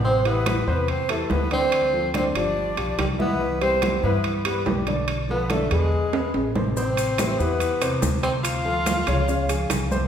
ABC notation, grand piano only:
X:1
M:4/4
L:1/8
Q:1/4=143
K:C
V:1 name="Grand piano"
[C,Cc] [E,EG]2 [C,Cc]2 [E,EG]2 [D,Dd]- | [D,Dd] [F,FA] [D,Dd] [F,FG]2 [F,FG]2 [E,Ee] | [E,Ee] [G,Gc]2 [E,Ee]2 [G,GB]2 [D,Dd]- | [D,Dd] [F,FA] [D,Dd] [_A,_AB]2 [^G,^GB]2 [C,Cc] |
[K:Am] [C,Cc]2 [E,EG] [E,EG]2 [C,Cc]2 [C,Cc]- | [C,Cc] [F,FA]2 [^C,^C^c] [C,Cc] [^E,^E^G]2 [=C,=C=c] |]